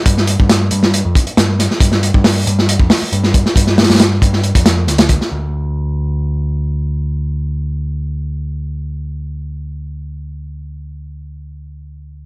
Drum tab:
HH |x---x---x---x---x---x-x-x---x---|x---x---o---x---x---o---x---x---|x---oooox---x---x-x-x---x-x-x---|--------------------------------|
SD |--o-----o-----o---------o---o-o-|--o-----o-----o-----o-----o---o-|--o-ooooo-----o-----o---o-o---o-|--------------------------------|
BD |o-----o-------------o-----------|o-----o-----------o---------o---|o-----------o-----o---------o---|--------------------------------|

HH |--------------------------------|--------------------------------|--------------------------------|
SD |--------------------------------|--------------------------------|--------------------------------|
BD |--------------------------------|--------------------------------|--------------------------------|